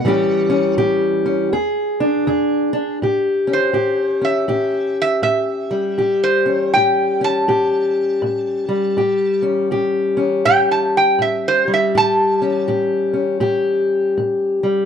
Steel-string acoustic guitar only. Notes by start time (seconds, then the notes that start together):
0.05 A2 E3 G3 C#4 G4
0.50 C#4
0.78 A2 G4
1.26 C#4
1.53 E2 G#4
2.00 D4
2.27 E2 G#4
2.73 D4
3.02 A2 G4
3.47 C#4
3.73 A2 G4
4.21 C#4
4.48 A2 G4
5.22 A2
5.71 G3
5.98 A2 G4
6.46 C#4
6.76 A2 G4
7.21 C#4
7.48 A2 G4
8.22 A2
8.69 G3
8.97 A2 G4
9.42 C#4
9.71 A2 G4
10.17 C#4
10.46 A2 G4
11.19 A2
11.68 G3
11.95 A2 G4
12.42 C#4
12.68 A2 G4
13.13 C#4
13.40 A2 G4
14.18 A2
14.63 G3